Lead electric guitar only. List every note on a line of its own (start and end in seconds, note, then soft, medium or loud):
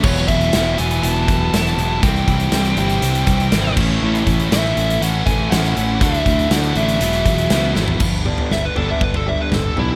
0.04 0.27 C#5 loud
0.28 0.79 E5 loud
0.78 1.03 G#5 loud
1.03 2.03 A5 loud
2.03 2.77 G5 loud
2.78 3.73 G5 loud
4.53 5.03 E5 medium
5.02 5.26 F#5 loud
5.27 5.50 G#5 loud
5.51 6.02 F#5 loud
6.02 6.53 E5 medium
6.52 6.77 F#5 medium
6.77 7.73 E5 medium
8.53 8.64 E5 medium
8.65 8.77 B4 medium
8.78 8.89 A4 medium
8.91 9.02 E5 medium
9.03 9.14 B4 medium
9.17 9.28 A4 medium
9.28 9.40 E5 medium
9.41 9.54 B4 medium
9.54 9.78 A4 medium
9.79 9.96 E4 loud